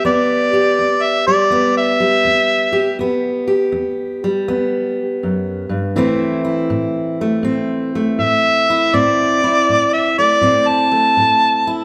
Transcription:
Already playing: G3 G4
0.05 E2 B3 D5
0.53 G4
0.79 E2
1.03 E5
1.27 G3 D5
1.50 E2 B3
1.77 E5
2.00 G3
2.25 E2
2.72 G4
2.99 E2 B3
3.48 G4
3.72 E2
4.24 G3
4.48 E2 B3
5.23 F#2
5.69 G2
5.96 A2 E3 A3 C4 E4
6.45 E4
6.70 A2
7.21 A3
7.43 A2 C4
7.95 A3
8.19 A2 E5
8.70 E4
8.94 A2 C4 D5
9.44 E4
9.69 A2
9.93 E5
10.18 A3 D5
10.41 A2 C4
10.68 A5
10.91 A3
11.17 A2
11.67 E4

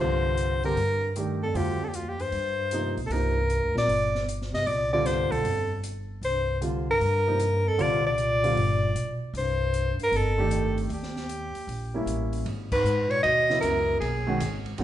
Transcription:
0.00 C2 G2 D3 G3 C4 F4 C5
0.37 closed hi-hat
0.63 G2 D3 G3 C4 G4 A#4, open hi-hat
0.76 G2, open hi-hat
1.16 D#3 A3 D4 G4, closed hi-hat
1.41 F2 A4
1.54 D2 F2 D3 G3 C4 F4 G4, open hi-hat
1.81 F2 A4
1.87 D#2 G4
1.94 D2 F4, closed hi-hat
2.06 D#2 G4
2.19 G2 C5, open hi-hat
2.32 G2, open hi-hat
2.71 C3 F3 A#3 D#4, closed hi-hat
2.96 B1, open hi-hat
3.06 C2 F2 G2 A4
3.11 C3 F3 A#3 D#4 A#4, open hi-hat
3.50 closed hi-hat
3.61 D2
3.74 A#1 A#2, snare
3.78 D5
3.87 G1, open hi-hat
4.15 snare
4.29 closed hi-hat
4.42 snare
4.52 G2 C3 D#5, snare, open hi-hat
4.66 C2 A#2 D5, open hi-hat
4.92 A#2 D3 G3 C4 F4 D5
5.05 G2 C5, snare, closed hi-hat
5.29 B1 F2 A4, kick, open hi-hat
5.44 G1, open hi-hat
5.84 closed hi-hat
6.21 C2 G2 C5, open hi-hat
6.61 D3 G3 C4 F4, closed hi-hat
6.88 G2 A#4
7.01 G2, open hi-hat
7.27 C3 F3 A#3 D#4
7.39 closed hi-hat
7.66 F2 A4
7.78 C2 A#2 D3 G3 C4 F4 D5, open hi-hat
8.06 A#2 D5
8.18 closed hi-hat
8.44 D3 G3 C4 F4, open hi-hat
8.56 G1, open hi-hat
8.95 B1, closed hi-hat
9.33 C2 G2, open hi-hat
9.38 C5
9.74 closed hi-hat
9.99 G2, muted upright bass stroke, open hi-hat
10.03 A#4
10.11 G1 F2, open hi-hat
10.17 A4
10.38 D#3 A3 D4 G4
10.51 closed hi-hat
10.78 open hi-hat
10.89 D#2, open hi-hat
10.94 G4
11.03 snare
11.16 snare
11.29 closed hi-hat
11.55 muted upright bass stroke, open hi-hat
11.67 A#1, open hi-hat
11.94 G3 A#3 C#4 E4
12.06 A1, closed hi-hat
12.33 open hi-hat
12.46 G#1, ride
12.72 G#2 B4, kick, crash
12.84 G#2, hi-hat pedal
13.07 A#2 C#5, ride
13.21 D#2 B2 D#5, ride
13.50 C#3 F#3 B3 E4, snare
13.60 C#2 F#2 A#4, hi-hat pedal, ride
13.98 B1 D#2 G#4, ride
14.27 D#3 G#3 C#4 F#4
14.40 G#1, hi-hat pedal, ride
14.66 ride
14.78 A#1 D#3 G#3 C#4 F#4, ride

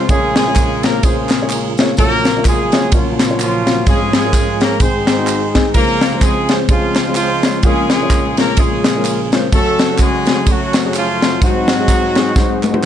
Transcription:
Already playing: C#3 F4
0.09 A#1 A#2 G#3 A#3 C#4 F4 G#4 A#4 C#5, kick, ride, tambourine
0.36 G#3 C#4 F4 G#4, snare, ride, tambourine
0.46 A#3 C#4 F4 G#4 C#5
0.56 kick, clap, ride, tambourine
0.83 A#3 C#4 F4 G#4 A#4, snare, ride, tambourine
1.03 G#3 A#3 C#4 F4 G#4 C5, kick, ride, tambourine
1.29 snare, clap, ride, tambourine
1.41 A#3 C#4 F4 G#4 C#5
1.50 clap, ride, tambourine
1.77 A#3 C#4 F4 G#4 C#5, snare, ride, tambourine
1.97 A#1 A#2 F#3 A#3 C#4 F4 F#4 A#4 C#5, kick, ride, tambourine
2.25 snare, ride, tambourine
2.36 A#3 C#4 F4 F#4 C#5
2.45 G#3 C#4 F4 G#4, kick, clap, ride, tambourine
2.72 A#3 C#4 F4 F#4 C#5, snare, ride, tambourine
2.92 F3 A#3 C#4 F4 F#4 C#5, kick, ride, tambourine
3.20 snare, clap, ride, tambourine
3.29 A#3 C#4 F4 F#4 C#5
3.39 F3 C#4 F4, clap, ride, tambourine
3.67 A#3 C#4 F4 F#4 A#4, snare, ride, tambourine
3.86 G#1 G#2 F3 G#3 C#4 F4 G#4, kick, ride, tambourine
4.13 G#3 C#4 F4 G#4, snare, ride, tambourine
4.24 C#4 F4 A#4
4.33 kick, clap, ride, tambourine
4.60 A#3 C#4 F4 G#4 A#4, snare, ride, tambourine
4.80 G#1 G#2 D#3 C4 D#4 G#4 C5, kick, ride, tambourine
5.07 snare, clap, ride, tambourine
5.18 C4 D#4 F#4
5.27 clap, ride, tambourine
5.54 C4 D#4 G#4, kick, snare, ride, tambourine
5.74 C#2 C#3 F3 G#3 A#3 C4 C#4 F4 A#4 C5, kick, ride, tambourine
6.01 snare, ride, tambourine
6.12 G#3 C4 C#4 F4 C5
6.21 G#3 C4 F4 G#4, kick, clap, ride, tambourine
6.49 G#3 C4 C#4 F4 C5, snare, ride, tambourine
6.69 F3 G#3 C4 C#4 F4 G#4, kick, ride, tambourine
6.95 snare, clap, ride, tambourine
7.07 G#3 C4 C#4 F4 C5
7.15 F3 G#3 C4 F4, clap, ride, tambourine
7.43 G#3 C4 C#4 F4 C#5, snare, ride, tambourine
7.63 A#1 A#2 G#3 A#3 C#4 F4 G#4 A#4, kick, ride, tambourine
7.90 G#3 C#4 F4 G#4, snare, ride, tambourine
8.02 G#3 A#3 C#4 F4 C#5
8.10 kick, clap, ride, tambourine
8.37 G#3 A#3 C#4 F4 A#4, snare, ride, tambourine
8.57 G#3 A#3 C#4 F4 G#4 C#5, kick, ride, tambourine
8.84 snare, clap, ride, tambourine
8.95 G#3 A#3 C#4 F4 A#4
9.05 clap, ride, tambourine
9.32 G#3 A#3 C#4 F4 C5, snare, ride, tambourine
9.52 F#1 F#2 F#3 A3 C#4 F#4 A4 C#5, kick, ride, tambourine
9.79 snare, ride, tambourine
9.90 A3 C#4 F#4
9.98 G#3 C#4 G#4, kick, clap, ride, tambourine
10.25 A3 C#4 F#4, snare, ride, tambourine
10.46 F#3 A3 C#4 F#4, kick, ride, tambourine
10.74 snare, clap, ride, tambourine
10.85 F#3 A3 C#4 F#4 G#4
10.94 F3 A3 C#4 F4, clap, ride, tambourine
11.22 A3 C#4 F#4, snare, ride, tambourine
11.41 G#1 G#2 F#3 G#3 C4 D#4 F#4 G#4 C5, kick, ride, tambourine
11.68 snare, ride, tambourine
11.79 G#3 C4 D#4 F#4 G#4
11.88 kick, clap, ride, tambourine
12.15 G#3 C4 D#4 F#4 G#4, snare, ride, tambourine
12.36 G#3 C4 D#4 F#4 C5, kick, snare, tambourine
12.63 F#5, clap, high tom, tambourine
12.73 G#3 C4 D#4 F#4 C5, high tom

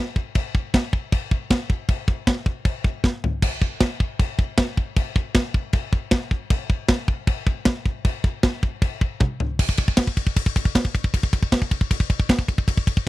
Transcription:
0.16 kick
0.35 kick, china
0.55 kick
0.74 kick, snare, china
0.93 kick
1.12 kick, china
1.31 kick
1.51 kick, snare, china
1.70 kick
1.89 kick, china
2.08 kick
2.27 kick, snare, china
2.46 kick
2.65 kick, china
2.84 kick
3.04 kick, snare
3.24 floor tom
3.42 kick, crash, china
3.62 kick
3.81 kick, snare, china
4.00 kick
4.19 kick, china
4.39 kick
4.58 kick, snare, china
4.77 kick
4.97 kick, china
5.16 kick
5.35 kick, snare, china
5.54 kick
5.73 kick, china
5.93 kick
6.11 kick, snare, china
6.31 kick
6.50 kick, china
6.70 kick
6.88 kick, snare, china
7.08 kick
7.27 kick, china
7.47 kick
7.65 kick, snare, china
7.86 kick
8.05 kick, china
8.24 kick
8.43 kick, snare, china
8.63 kick
8.82 kick, china
9.01 kick
9.20 kick, high tom
9.40 floor tom
9.59 kick, crash
9.69 kick
9.77 kick, crash
9.88 kick
9.97 kick, snare, crash
10.07 kick
10.17 kick, crash
10.27 kick
10.36 kick, crash
10.46 kick
10.56 kick, crash
10.65 kick
10.75 kick, snare, crash
10.85 kick
10.95 kick, crash
11.04 kick
11.14 kick, crash
11.23 kick
11.33 kick, crash
11.43 kick
11.52 kick, snare, crash
11.62 kick
11.71 kick, crash
11.81 kick
11.91 kick, crash
12.00 kick
12.10 kick, crash
12.20 kick
12.29 kick, snare, crash
12.39 kick
12.48 kick, crash
12.58 kick
12.68 kick, crash
12.77 kick
12.87 kick, crash
12.97 kick

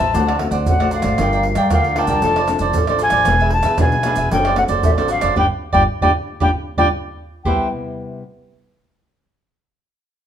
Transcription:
Already playing: G2 A5
0.00 A1 B4 C5 E5
0.14 D2 D3 A3 C4 D4 F#4 C5 D5 F#5, pandeiro, maracas, surdo
0.27 C5 D5 F#5, pandeiro, tamborim, maracas
0.39 A3 C4 F#4, muted cavaquinho stroke, pandeiro, tamborim, surdo
0.51 D2 C5 D5 F#5, pandeiro, maracas, surdo
0.66 A1 A2 A3 C4 F#4 F#5, pandeiro, maracas, surdo
0.80 A3 C4 F#4 C5 D5 F#5, pandeiro, tamborim, maracas
0.91 D4 C5 D5 F5 F#5, pandeiro, maracas
1.02 G#1 C5 D5 F#5, pandeiro, tamborim, maracas, surdo
1.18 G1 G3 D4 F4 A#4 D5 G5, pandeiro, tamborim, maracas, surdo
1.33 A#4 D5 G5, pandeiro, maracas
1.43 muted cavaquinho stroke, pandeiro
1.55 G2 A#4 D5 G5, pandeiro, tamborim, maracas, surdo
1.70 D2 D3 D4 F4 A#4 D5 F5 G5, pandeiro, tamborim, maracas, surdo
1.84 pandeiro, maracas
1.96 D4 F4 A#4 D5 G5 A5, pandeiro, tamborim
2.07 C2 A#4 D5 G5, pandeiro, maracas, surdo
2.22 F1 F3 C4 D4 F4 A4 C5, pandeiro, maracas, surdo
2.26 D5
2.36 A4 C5 D5, pandeiro, tamborim, maracas
2.48 C4 D4 A4, muted cavaquinho stroke, pandeiro, tamborim, maracas, surdo
2.59 F1 A4 C5 D5, pandeiro, maracas, surdo
2.73 A1 F3 C4 D4 A4, pandeiro, maracas, surdo
2.87 C4 D4 A4 C5 D5, pandeiro, tamborim, maracas
2.99 F4 A4 C5 D5, pandeiro, maracas
3.03 G#5
3.10 A1 C5 D5, pandeiro, tamborim, maracas, surdo
3.15 A4
3.25 E1 E3 B3 D4 G#4, pandeiro, tamborim, maracas, surdo
3.30 B4 E5
3.40 G#4 B4 E5, pandeiro, maracas
3.50 A5, muted cavaquinho stroke, pandeiro
3.63 E2 G#4 B4 E5, pandeiro, tamborim, maracas, surdo
3.78 B1 B2 B3 D4 G#4 B4 G#5, pandeiro, tamborim, maracas, surdo
3.82 E5
3.92 pandeiro, maracas
4.03 B3 D4 G#4 B4, pandeiro, tamborim, maracas
4.07 E5
4.16 E1 G#4 B4 E5, pandeiro, maracas, surdo
4.31 F#1 F#3 C4 D4 F#4 A4 C5 D5 G5, pandeiro, maracas, surdo
4.45 A4 C5 D5, pandeiro, tamborim, maracas
4.56 C4 D4 A4 F#5, muted cavaquinho stroke, pandeiro, tamborim, surdo
4.68 F#1 A4 C5 D5, pandeiro, maracas, surdo
4.83 A1 F#3 C4 D4 A4 E5, pandeiro, maracas, surdo
4.97 C4 D4 A4 C5 D5, pandeiro, tamborim, maracas
5.08 F#4 A4 C5 D5 F5, pandeiro, maracas
5.21 F#1 A4 C5 D5, pandeiro, tamborim, maracas, surdo
5.36 G1 D4 F4 G4 B4 D5 G5, surdo
5.73 G1 D4 F4 G4 B4 D5 G5, surdo
6.01 G1 D4 F4 G4 B4 D5 G5, surdo
6.40 G1 D4 F4 G4 B4 D5 G5, surdo
6.77 G1 D4 F4 G4 B4 D5 G5, surdo
7.45 C2 C3 G3 B3 E4 G4 B4 C5 E5 G5, surdo

